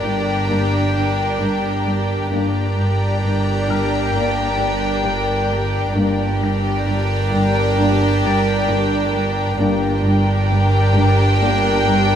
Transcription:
Already playing: G1 G2 D4 G4 A#4 D5 G5 A#5, impact
0.06 G2
0.49 G2 A#3 D4
0.96 G2
1.42 G2
1.87 G3
2.31 G1 G2 A#3 D4 G4 A#4 D5 G5 A#5
2.79 G2
3.24 G2
3.69 G2 F6
4.14 G2 A#3 D4
4.60 G2
5.05 G2
5.51 G3
5.94 G1 G2 A#3 D4 G4 A#4 D5 G5 A#5
6.43 G2 A#6
6.87 G2
7.33 G2
7.77 G2 A#3 D4
8.24 G2 A6
8.69 G2
9.15 G3
9.58 G1 G2 A#3 D4 G4 A#4 D5 G5 A#5
10.05 G2
10.51 G2
10.97 G2
11.42 G2 A#3 D4
11.88 G2

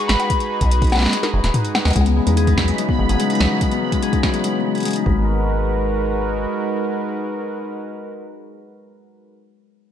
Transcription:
Already playing: G#3 D#4 F#4 G#4 B4
0.08 G#1 B5, snare
0.20 closed hi-hat, high bongo
0.22 high bongo
0.25 high bongo
0.27 kick, closed hi-hat, high bongo
0.40 closed hi-hat
0.61 B1, kick, closed hi-hat
0.71 closed hi-hat
0.82 kick, closed hi-hat
0.84 closed hi-hat
0.87 closed hi-hat
0.90 snare, closed hi-hat, high bongo, cabasa
0.95 snare, closed hi-hat, high bongo, cabasa
0.97 snare, high bongo, cabasa
1.02 snare, high bongo
1.06 snare
1.09 snare, high bongo
1.13 snare, closed hi-hat
1.23 snare, closed hi-hat, high bongo
1.34 F#1
1.44 D#1, snare, closed hi-hat
1.54 closed hi-hat, mid tom
1.65 closed hi-hat
1.75 snare, high bongo
1.85 D#2, snare, closed hi-hat, high bongo
1.88 closed hi-hat
1.91 closed hi-hat, high bongo
1.93 C#2 C#3 E3 G#3 B3 D#4, kick, closed hi-hat
1.96 B5, closed hi-hat, high bongo
2.01 high bongo
2.06 B3, closed hi-hat
2.16 G#3
2.27 E2 G#3, closed hi-hat
2.37 G#4, closed hi-hat
2.47 D#4, kick, closed hi-hat
2.58 F#3, kick, snare
2.68 G#3, closed hi-hat
2.78 G#3, closed hi-hat
2.89 B3, kick
2.99 G#1 G#3
3.09 G#1 G#4, closed hi-hat
3.20 G#3, closed hi-hat
3.30 D#4, closed hi-hat
3.35 closed hi-hat
3.40 C#2 F#3, snare, closed hi-hat
3.46 closed hi-hat
3.51 F#3
3.61 G#3, kick, closed hi-hat
3.72 B3, closed hi-hat
3.82 G#3
3.92 G#3, kick, closed hi-hat
4.02 G#4, closed hi-hat
4.13 D#4, kick, closed hi-hat
4.23 F#3, kick, snare
4.34 G#3, closed hi-hat
4.44 G#3, closed hi-hat
4.54 B3
4.65 G#3
4.75 G#4, closed hi-hat
4.78 closed hi-hat
4.80 closed hi-hat
4.83 G#3, closed hi-hat
4.85 closed hi-hat
4.88 closed hi-hat
4.91 closed hi-hat
4.93 D#4, closed hi-hat
4.96 closed hi-hat
5.06 G#1 G#3 D#4 F#4 A#4 B4, kick

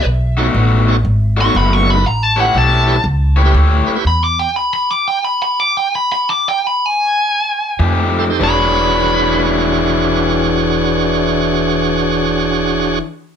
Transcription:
0.05 B1
0.37 B2 A3 D#4 F#4 A4 C#5
0.54 A1 B2 A3 D#4 F#4
0.87 D#4 F#4 A4 C#5
1.05 G#1
1.37 B2 A3 D#4 F#4 A4 C#5
1.41 C#6
1.45 D#4 F#4 A4 C#5
1.55 F#1 B2 A3 D#4 F#4 B5
1.73 C#6
1.86 A4 C#5
1.90 B5
1.95 D#4 F#4 A4 B4
2.04 A1 A#5
2.23 A5
2.36 A3 E4 G4 B4 C#5 F#5
2.55 B1 A3 E4 G4 C#5 A5
2.87 E4 G4 B4 C#5
3.04 C#2
3.37 A3 E4 G4 B4 C#5
3.45 E4 G4 B4 C#5
3.54 D2 A3 E4 G4 C#5
3.87 B4 C#5, muted upright bass stroke
3.95 E4 G4 B4 C#5
4.05 E2 B5
4.24 D6
4.39 G5
4.56 B5
4.74 B5
4.91 D6
5.08 G5
5.25 B5
5.43 B5
5.60 D6
5.77 G5
5.95 B5
6.12 B5
6.30 D6
6.49 G5
6.67 B5
6.86 G#5
7.79 F2 F3 A3 D#4 G4
8.19 A4 C5
8.30 D#4 G4 A4 C5
8.40 E1 E3 D4 F#4 G#4 C#5 B5

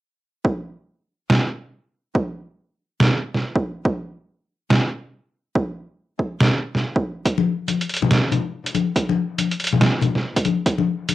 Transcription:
0.45 kick
1.30 snare
2.15 kick
3.00 snare
3.34 snare
3.56 kick
3.85 kick
4.70 snare
5.55 kick
6.19 kick
6.41 snare
6.75 snare
6.96 kick
7.26 kick, closed hi-hat
7.38 high conga
7.68 closed hi-hat, high conga
7.81 closed hi-hat
7.89 closed hi-hat
7.94 closed hi-hat
7.97 closed hi-hat
8.02 high conga, low conga
8.11 snare, closed hi-hat
8.32 closed hi-hat, high conga, low conga
8.66 closed hi-hat
8.75 closed hi-hat, high conga
8.96 kick, closed hi-hat
9.09 high conga
9.38 closed hi-hat, high conga
9.51 closed hi-hat
9.60 closed hi-hat
9.64 closed hi-hat
9.67 closed hi-hat
9.73 high conga, low conga
9.81 snare, closed hi-hat
10.01 closed hi-hat, high conga, low conga
10.15 snare
10.36 kick, closed hi-hat
10.45 closed hi-hat, high conga
10.66 kick, closed hi-hat
10.78 high conga
11.09 closed hi-hat, high conga

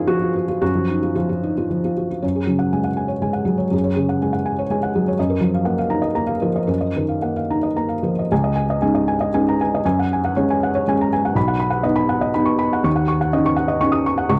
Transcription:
Already playing: F#2 F3 D#4 F4 G#4 A#4 B4
0.07 F3 F#4
0.22 F4
0.36 F#4
0.48 F4
0.62 F#2 F#4
0.75 F3
0.90 D#4
1.02 F4
1.15 F3 F4
1.29 F4
1.43 D#4
1.58 F4
1.70 F3
1.85 F4
1.97 F#4
2.11 F4
2.22 F#2 C#5
2.35 G#4
2.47 C#3 F#3
2.59 F#5
2.73 G#3 G#5
2.84 F#5
2.97 G#5
3.08 C#5
3.22 G#3 G#5
3.33 F#5
3.45 F#3 G#4
3.58 C#5
3.71 F#2 G#4
3.84 C#5
3.96 C#3 G#4
4.09 F#5
4.22 G#3 G#5
4.33 F#5
4.46 G#5
4.59 C#5
4.70 G#3 G#5
4.83 F#5
4.95 F#3 G#4
5.08 C#5
5.19 F#2 D#5
5.30 A#4
5.41 F3 F#3
5.54 F5
5.65 A#3 F#5
5.79 F5
5.90 D#4 A#5
6.02 D#5
6.15 A#3 A#5
6.27 F5
6.42 F3 A#4
6.56 D#5
6.67 F#2 A#4
6.81 D#5
6.96 D#3 A#4
7.09 F5
7.22 A#3 F#5
7.36 F5
7.50 D#4 A#5
7.63 D#5
7.76 A#3 A#5
7.89 F5
8.03 F3 A#4
8.19 D#5
8.32 C#2 G#5
8.44 D#5
8.56 G#5
8.70 D#5
8.82 G#3 C#4 D#4 G#5
8.95 D#5
9.08 G#5
9.21 D#5
9.34 G#3 C#4 D#4 G#5
9.49 A#5
9.61 G#5
9.75 D#5
9.85 F#2 G#5
9.99 F#5
10.13 G#5
10.25 F#5
10.36 G#3 C#4 C#5
10.50 G#5
10.63 F#5
10.75 C#5
10.88 G#3 C#4 G#5
11.01 A#5
11.13 G#5
11.25 F#5
11.35 B1 B5
11.48 F#5
11.60 B5
11.70 F#5
11.83 B3 D#4 D#5
11.96 B5
12.09 F#5
12.21 D#5
12.34 B3 D#4 B5
12.45 C#6
12.59 B5
12.73 F#5
12.84 D#2 C#6
12.96 F#5
13.08 C#6
13.21 F#5
13.33 C#4 D#4 D#5
13.46 C#6
13.56 F#5
13.68 D#5
13.81 C#4 D#4 C#6
13.92 D#6
14.06 C#6
14.18 F#5
14.29 C#2 C#6

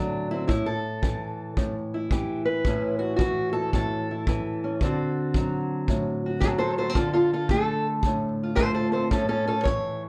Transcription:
Already playing: A2 D3 F#3 C4 D4 A4
0.31 C4 E4
0.48 A2 E4, kick
0.66 A4
1.02 E3, kick
1.57 A2, kick
1.94 E4
2.11 E3 G4, kick
2.45 B4
2.65 A2 C#4 E4, kick
2.99 F#4
3.16 E3 F#4, kick
3.53 A4
3.73 A2 A4, kick
4.11 E4
4.27 E3, kick
4.64 C#4
4.81 D3 C4 F#4 A4, kick
5.34 F#3, kick
5.88 A2, kick
6.26 F#4
6.40 F#3 A4 C5, kick
6.58 A4 C5
6.78 A3 A4 C5
6.89 C4
6.95 D3 F4 A4, kick
7.13 F4 A4
7.33 F4 A4
7.49 A3 A4, kick
8.03 A2, kick
8.43 F4
8.55 A3 A4 C5, kick
8.75 A4 C5
8.92 C4 A4 C5
9.11 A2 C#4 A4, kick
9.29 C#4 A4
9.47 C#4 A4
9.64 E3 C#5, kick

